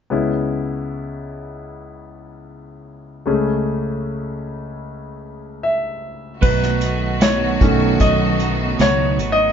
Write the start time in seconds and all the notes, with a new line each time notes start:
0.10 C#2 C#3 B3 C#4 E4
3.26 C#2 C#3 A3 C#4 G#4
5.63 E5
6.41 B1 B2 D#3 F#3 A3 B3 D#4 F#4 B4, kick, crash
6.63 snare
6.81 A3 D#4 F#4, closed hi-hat
7.20 B2 F#3 A3 D#4 F#4 C#5, snare, closed hi-hat
7.61 B1 D#3 A3 C#4, kick, closed hi-hat
7.99 B1 F#3 A3 D#4 F#4 D#5, kick, closed hi-hat
8.39 A3 D#4 F#4, closed hi-hat
8.79 C#2 B2 F#3 A3 D#4 F#4 C#5, snare, closed hi-hat
9.18 G#1 A3 D#4 F#4, closed hi-hat
9.32 D#5